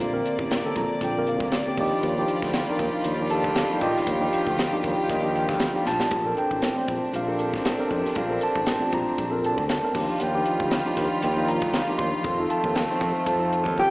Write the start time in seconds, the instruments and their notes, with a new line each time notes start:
Already playing: string section C3 A#3 D5
0.00 fingered electric bass A#1, closed hi-hat
0.12 tine electric piano D3 A#3 C4 A#4
0.26 closed hi-hat
0.39 fingered electric bass A1, kick
0.51 snare, closed hi-hat
0.65 tine electric piano D3 A#3 C4 A4
0.76 fingered electric bass A#1, tine electric piano A#5, kick, closed hi-hat
0.89 muted fingered electric bass stroke
1.01 fingered electric bass A#1, tine electric piano G5, kick, closed hi-hat
1.17 tine electric piano D3 A#3 C4 A#4
1.27 tine electric piano F5, closed hi-hat
1.40 fingered electric bass D2, kick
1.52 tine electric piano D5, snare, closed hi-hat
1.66 tine electric piano D3 A#3 C4 G4
1.76 fingered electric bass D#2, string section D#3 G3 F4, tine electric piano F3 D4 D#5, kick, open hi-hat
1.81 tine electric piano D#4 G4
2.03 fingered electric bass D#2, closed hi-hat
2.18 tine electric piano F3 D4 D#4 G4
2.28 closed hi-hat
2.42 fingered electric bass D2, kick, snare
2.53 snare, closed hi-hat
2.69 tine electric piano F3 D4 D#4 A#4
2.79 fingered electric bass D#2, kick, closed hi-hat
2.94 muted fingered electric bass stroke
3.04 fingered electric bass D#2, closed hi-hat
3.21 tine electric piano F3 D4 D#4 G4
3.30 tine electric piano A4 A5, closed hi-hat
3.44 fingered electric bass D2, kick
3.56 snare, closed hi-hat
3.70 tine electric piano F3 D4 D#4 G4
3.81 fingered electric bass A#1, tine electric piano G4 D5 D#5 G5, string section G4, kick, closed hi-hat
3.96 snare
4.07 fingered electric bass D#2, kick, closed hi-hat
4.20 tine electric piano F3 D4 D#4 G4
4.33 closed hi-hat
4.47 fingered electric bass D2, kick
4.59 snare, closed hi-hat
4.71 tine electric piano F3 D4 D#4 G4
4.84 fingered electric bass D#2, kick, closed hi-hat
4.98 muted fingered electric bass stroke
5.09 fingered electric bass D#2, tine electric piano D#5, kick, closed hi-hat
5.21 tine electric piano F3 D4 D#4 G4
5.34 tine electric piano G5, closed hi-hat
5.49 fingered electric bass D2, kick, snare
5.60 snare, closed hi-hat
5.74 tine electric piano F3 D4 D#4 G4
5.86 fingered electric bass A#1, tine electric piano A5, snare
6.00 snare
6.11 fingered electric bass A#1, string section C3 C4 D4, kick, closed hi-hat
6.25 tine electric piano C4 D4 A4 A#4
6.37 tine electric piano G5, closed hi-hat
6.51 fingered electric bass A1, kick
6.62 snare, closed hi-hat
6.77 tine electric piano A3 C4 D4 C5
6.88 fingered electric bass A#1, kick, closed hi-hat
7.13 fingered electric bass A#1, tine electric piano F5, closed hi-hat
7.27 tine electric piano C4 D4 A4 A#4
7.39 closed hi-hat
7.54 fingered electric bass A1, kick, snare
7.65 snare, closed hi-hat
7.78 tine electric piano C4 D4 A4 A#4
7.91 fingered electric bass F2, kick, closed hi-hat
8.05 snare
8.15 fingered electric bass A#1, tine electric piano F5, kick, closed hi-hat
8.29 tine electric piano C4 D4 A4 A#4
8.41 tine electric piano A5, closed hi-hat
8.56 fingered electric bass A1, kick
8.66 snare, closed hi-hat
8.79 tine electric piano A3 C4 D4 F4
8.92 fingered electric bass A#1, tine electric piano A#5, kick, closed hi-hat
9.08 muted fingered electric bass stroke
9.18 fingered electric bass A#1, kick, closed hi-hat
9.31 tine electric piano C4 D4 A4 A#4
9.44 tine electric piano A5, closed hi-hat
9.58 fingered electric bass D2, kick
9.69 snare, closed hi-hat
9.83 tine electric piano A3 C4 D4 A#4
9.94 fingered electric bass D#2, string section D#3 G3 F4, tine electric piano F3 D4 D#4 G4, kick, open hi-hat
10.19 fingered electric bass D#2, tine electric piano F#5, closed hi-hat
10.24 tine electric piano G5
10.34 tine electric piano F3 D4 D#4 G4
10.46 closed hi-hat
10.60 fingered electric bass D2, kick
10.71 snare, closed hi-hat
10.85 tine electric piano F3 D4 D#4 G4
10.97 fingered electric bass D#2, kick, snare, closed hi-hat
11.22 fingered electric bass D#2, tine electric piano G5, closed hi-hat
11.35 tine electric piano F3 D4 D#4 F4
11.48 tine electric piano A#5, closed hi-hat
11.62 fingered electric bass D2, kick
11.74 snare, closed hi-hat
11.87 tine electric piano F3 D4 D#4 G4
11.98 fingered electric bass D#2, tine electric piano C6, kick, closed hi-hat
12.24 fingered electric bass F2, string section A3 C4, kick, closed hi-hat
12.39 tine electric piano F3 C4 D#4 A4
12.50 tine electric piano A5, closed hi-hat
12.64 fingered electric bass D#2, kick
12.76 snare, closed hi-hat
12.89 tine electric piano F3 C4 D#4 C5
13.01 fingered electric bass F2, kick, closed hi-hat
13.26 fingered electric bass F2, tine electric piano A5, kick, closed hi-hat
13.38 tine electric piano F3 C4 D#4 A4
13.53 closed hi-hat
13.66 fingered electric bass D#2, kick
13.78 nylon-string guitar G4, kick